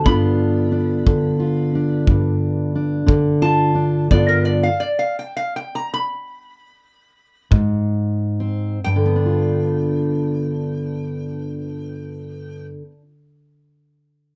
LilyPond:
<<
  \new Staff \with { instrumentName = "Resonator guitar played with a steel bar" } { \time 12/8 \key g \mixolydian \tempo 4. = 52 b''2. r2 a''4 | d''16 bes'16 d''16 f''16 d''16 f''16 g''16 f''16 g''16 bes''16 b''2 r4. | g''1. | }
  \new Staff \with { instrumentName = "Steel-string acoustic guitar" } { \time 12/8 \key g \mixolydian << { <d b d' f'>4 d'4 f'8 d'4. d'4 f'8 d'8 | <d b d' f'>4 r1 r8 c'8 | <d b d' f'>1. | } \\ { g,4. d4. g,4. d4. | g,4 r2. r8 aes,4. | g,1. | } >> }
  \new DrumStaff \with { instrumentName = "Drums" } \drummode { \time 12/8 bd4. bd4. bd4. bd4. | bd4. r4. r4. bd4. | r4. r4. r4. r4. | }
>>